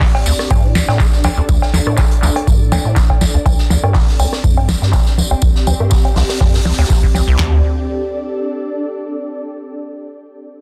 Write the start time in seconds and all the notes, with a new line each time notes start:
Already playing: C4 D4 G4 A4 D5
0.01 D3, kick, snare, clap, closed hi-hat, open hi-hat
0.14 snare, cowbell
0.26 D2, open hi-hat, tambourine
0.39 cross-stick, snare, closed hi-hat
0.50 G2, kick, closed hi-hat, tambourine, cowbell
0.64 A2
0.75 C2, snare, open hi-hat, tambourine
0.88 A2, snare, closed hi-hat, cowbell
0.99 D3, kick, snare, clap, closed hi-hat, tambourine
1.12 snare
1.24 D2, snare, open hi-hat, tambourine, cowbell
1.37 D2, closed hi-hat
1.49 D2, kick, closed hi-hat, tambourine
1.62 snare, cowbell
1.74 D#2, snare, open hi-hat, tambourine
1.87 A2, cross-stick, closed hi-hat
1.97 D3, kick, snare, clap, closed hi-hat, tambourine, cowbell
2.11 closed hi-hat
2.23 D2, snare, clap, open hi-hat, tambourine
2.36 cross-stick, closed hi-hat, cowbell
2.47 G2, kick, closed hi-hat, tambourine
2.60 A2
2.72 C2, snare, open hi-hat, tambourine, cowbell
2.85 A2, open hi-hat
2.96 D3, kick, snare, clap, tambourine
3.10 kick, cowbell
3.21 D2, snare, open hi-hat, tambourine
3.34 D2, closed hi-hat
3.46 C2 C4, kick, closed hi-hat, tambourine, cowbell
3.58 snare
3.70 D2, snare, open hi-hat, tambourine
3.83 G2, cross-stick, closed hi-hat, cowbell
3.94 C3, kick, snare, clap, closed hi-hat, open hi-hat
4.08 snare
4.19 C2, open hi-hat, tambourine, cowbell
4.32 cross-stick, snare, closed hi-hat
4.38 G4
4.44 F2, kick, closed hi-hat, tambourine
4.57 G2, cowbell
4.68 A#1, snare, open hi-hat, tambourine
4.82 G2, snare, closed hi-hat
4.93 C3, kick, snare, clap, tambourine, cowbell
5.06 snare
5.18 C2, snare, open hi-hat, tambourine
5.31 C2, closed hi-hat, cowbell
5.42 C2, kick, closed hi-hat, tambourine
5.55 snare
5.67 D2, snare, open hi-hat, tambourine, cowbell
5.80 G2, cross-stick, closed hi-hat
5.91 C3, kick, snare, clap, tambourine
6.05 closed hi-hat, cowbell
6.16 C2, snare, clap, open hi-hat
6.29 cross-stick, snare, closed hi-hat, open hi-hat
6.40 F2, kick, snare, open hi-hat, cowbell
6.54 G2, snare, open hi-hat
6.65 C2, snare, open hi-hat
6.72 snare, open hi-hat
6.78 D2, snare, open hi-hat, cowbell
6.84 snare, open hi-hat
6.90 A#1, kick, snare, clap, tambourine
7.03 C2, kick
7.14 C2, snare, open hi-hat, tambourine, cowbell
7.28 C2, closed hi-hat
7.39 D2 D4, snare, clap, floor tom
7.47 A4
7.54 D5